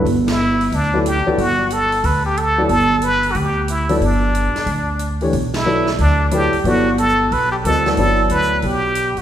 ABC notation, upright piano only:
X:1
M:4/4
L:1/8
Q:"Swing" 1/4=182
K:G
V:1 name="Upright piano"
z4 z [F,B,EAd] z [F,B,EAd] | z6 z [F,B,EAd] | z6 z [F,B,EAd] | z6 z [E,A,DG^c] |
z2 [F,B,EAd] z3 [F,B,EAd] z | [F,B,EAd] z4 z [G,C=F_B_e] [^F,=B,=EAd] | [F,B,EAd]4- [F,B,EAd] z3 |]